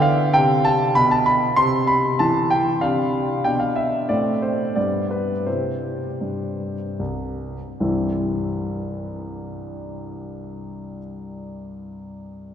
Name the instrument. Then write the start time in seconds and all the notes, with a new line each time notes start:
grand piano
Already playing: D3 B3 G5
0.02 F5
0.33 C3 G5
0.65 A5
0.95 B2 B5
1.11 A5
1.26 B5
1.56 C3 C4 C6
1.87 B5
2.19 E3 A5
2.50 G5
2.81 C3 D4 F5
3.44 B2 D4 G5
3.60 F5
3.76 E5
4.09 A2 C4 D5
4.42 C5
4.75 G2 B3 D5
5.11 B4
5.46 C3 C4 E4 C5
6.21 G2
6.99 C2
7.80 C2 G2 E3 G3 C4 E4